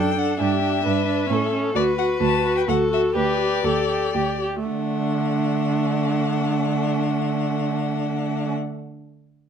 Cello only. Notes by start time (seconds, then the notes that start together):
Already playing: F#2
0.41 G2
0.86 G2
1.30 A2
1.75 D2
2.21 D2
2.68 D2
3.16 D2
3.64 D2
4.15 D2
4.68 D3